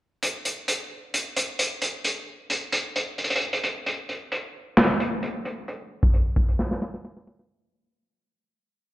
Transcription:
0.23 closed hi-hat medium
0.45 closed hi-hat medium
0.68 closed hi-hat medium
1.14 closed hi-hat medium
1.37 closed hi-hat medium
1.59 closed hi-hat medium
1.82 closed hi-hat medium
2.04 closed hi-hat medium
2.50 closed hi-hat medium
2.72 closed hi-hat medium
2.96 closed hi-hat medium
3.18 closed hi-hat medium
3.24 closed hi-hat medium
3.30 closed hi-hat medium
3.36 closed hi-hat medium
3.41 closed hi-hat soft
3.53 closed hi-hat medium
3.64 closed hi-hat medium
3.86 closed hi-hat medium
4.09 closed hi-hat medium
4.32 closed hi-hat medium
4.77 snare loud
4.77 clap medium
4.77 closed hi-hat medium
5.00 closed hi-hat medium
5.23 closed hi-hat medium
5.45 closed hi-hat medium
5.68 closed hi-hat medium
6.03 kick medium
6.14 closed hi-hat medium
6.36 kick medium
6.36 closed hi-hat medium
6.48 closed hi-hat medium
6.59 snare medium
6.71 snare medium
6.82 snare medium
6.94 snare medium
7.05 snare medium
7.17 snare medium
7.27 snare loud
7.39 snare medium

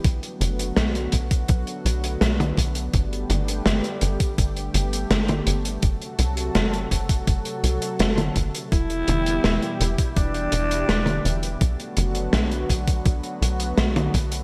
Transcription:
0.00 5.79 B3 medium
0.04 0.20 B1 medium
0.04 5.79 D3 medium
0.04 2.91 F#3 medium
0.04 8.68 A3 medium
0.04 2.91 F#4 medium
0.04 kick loud
0.04 closed hi-hat medium
0.23 closed hi-hat soft
0.41 0.72 F#1 loud
0.41 closed hi-hat medium
0.59 closed hi-hat medium
0.76 1.09 B1 medium
0.76 snare loud
0.76 closed hi-hat medium
0.95 closed hi-hat soft
1.12 1.45 B1 medium
1.12 kick medium
1.12 closed hi-hat medium
1.31 kick loud
1.31 closed hi-hat medium
1.48 1.65 B1 medium
1.48 kick loud
1.48 closed hi-hat medium
1.67 closed hi-hat soft
1.85 2.17 B1 medium
1.85 closed hi-hat medium
2.04 closed hi-hat medium
2.21 2.53 B1 medium
2.21 snare loud
2.21 closed hi-hat medium
2.40 closed hi-hat soft
2.40 mid tom medium
2.58 2.89 B1 medium
2.58 kick medium
2.58 closed hi-hat loud
2.75 closed hi-hat medium
2.93 3.25 G1 loud
2.93 5.80 G3 medium
2.93 5.80 G4 medium
2.93 kick loud
2.93 closed hi-hat medium
3.13 closed hi-hat soft
3.30 3.61 G1 medium
3.30 closed hi-hat medium
3.30 mid tom medium
3.48 closed hi-hat medium
3.66 3.82 G1 medium
3.66 snare loud
3.66 closed hi-hat medium
3.84 closed hi-hat soft
4.01 4.18 G1 medium
4.01 closed hi-hat medium
4.20 kick loud
4.20 closed hi-hat medium
4.38 4.70 G1 medium
4.38 kick loud
4.38 closed hi-hat medium
4.56 closed hi-hat soft
4.74 5.06 G1 medium
4.74 closed hi-hat medium
4.93 closed hi-hat medium
5.11 5.42 G1 medium
5.11 snare loud
5.11 closed hi-hat medium
5.28 closed hi-hat soft
5.28 mid tom medium
5.47 5.78 G1 medium
5.47 closed hi-hat loud
5.65 closed hi-hat medium
5.82 5.99 F#1 medium
5.82 8.69 C3 medium
5.82 8.69 F#3 medium
5.82 8.69 F#4 medium
5.82 8.69 A4 medium
5.82 kick loud
5.82 closed hi-hat medium
6.02 closed hi-hat soft
6.19 6.51 C2 loud
6.19 closed hi-hat medium
6.37 closed hi-hat medium
6.55 6.87 F#1 medium
6.55 snare loud
6.55 closed hi-hat medium
6.73 closed hi-hat soft
6.91 7.23 F#1 medium
6.91 kick medium
6.91 closed hi-hat medium
7.09 kick loud
7.09 closed hi-hat medium
7.27 7.43 F#1 medium
7.27 kick loud
7.27 closed hi-hat medium
7.45 closed hi-hat soft
7.64 7.79 C2 medium
7.64 closed hi-hat medium
7.82 closed hi-hat medium
7.99 8.31 F#1 medium
7.99 snare loud
7.99 closed hi-hat medium
8.18 closed hi-hat soft
8.18 mid tom medium
8.36 8.52 F#1 medium
8.36 kick medium
8.36 closed hi-hat medium
8.55 closed hi-hat medium
8.72 9.04 E1 medium
8.72 11.58 B2 medium
8.72 11.58 E3 medium
8.72 11.58 G3 medium
8.72 11.58 E4 medium
8.72 10.02 E4 loud
8.72 11.58 G4 medium
8.72 kick loud
8.72 closed hi-hat medium
8.90 closed hi-hat soft
9.08 9.40 E1 loud
9.08 closed hi-hat medium
9.08 mid tom medium
9.26 closed hi-hat medium
9.44 9.60 E1 medium
9.44 snare loud
9.44 closed hi-hat medium
9.62 closed hi-hat soft
9.81 9.96 E1 medium
9.81 closed hi-hat medium
9.98 kick loud
9.98 closed hi-hat medium
10.16 10.48 E1 medium
10.16 11.47 D4 loud
10.16 kick loud
10.16 closed hi-hat medium
10.34 closed hi-hat soft
10.52 10.84 E1 medium
10.52 closed hi-hat loud
10.71 closed hi-hat medium
10.89 11.21 E1 medium
10.89 snare loud
10.89 closed hi-hat medium
11.06 closed hi-hat soft
11.06 mid tom loud
11.25 11.57 E1 medium
11.25 closed hi-hat medium
11.43 closed hi-hat medium
11.61 11.77 B1 medium
11.61 14.44 D3 medium
11.61 14.44 F#3 medium
11.61 14.44 A3 medium
11.61 14.44 B3 medium
11.61 14.44 F#4 medium
11.61 kick loud
11.61 closed hi-hat medium
11.80 closed hi-hat soft
11.97 12.29 F#1 loud
11.97 closed hi-hat medium
12.15 closed hi-hat medium
12.33 12.65 B1 medium
12.33 snare loud
12.33 closed hi-hat medium
12.51 closed hi-hat soft
12.70 13.01 B1 medium
12.70 kick medium
12.70 closed hi-hat medium
12.88 kick loud
12.88 closed hi-hat medium
13.05 13.22 B1 medium
13.05 kick loud
13.05 closed hi-hat medium
13.23 closed hi-hat soft
13.42 13.73 B1 medium
13.42 closed hi-hat loud
13.60 closed hi-hat medium
13.78 14.10 B1 medium
13.78 snare loud
13.78 closed hi-hat medium
13.96 closed hi-hat soft
13.96 mid tom loud
14.14 14.44 B1 medium
14.14 kick medium
14.14 closed hi-hat medium
14.32 closed hi-hat medium

